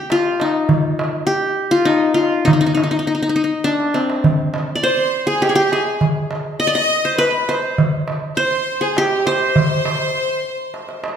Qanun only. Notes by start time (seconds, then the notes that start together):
Already playing: G4
0.12 F4
0.41 D#4
1.27 G4
1.71 F4
1.85 D#4
2.14 F4
2.45 D#4
2.53 D#4
2.61 D#4
2.66 D#4
2.75 D#4
2.83 D#4
2.91 D#4
2.99 D#4
3.07 D#4
3.15 D#4
3.23 D#4
3.29 D#4
3.36 D#4
3.44 D#4
3.64 D4
3.94 C4
4.75 D5
4.83 C5
5.27 G#4
5.42 G4
5.49 G#4
5.55 G4
5.73 G#4
6.60 D#5
6.67 D5
6.75 D#5
7.05 C5
7.18 B4
7.49 C5
8.37 C5
8.81 G#4
8.98 G4
9.27 C5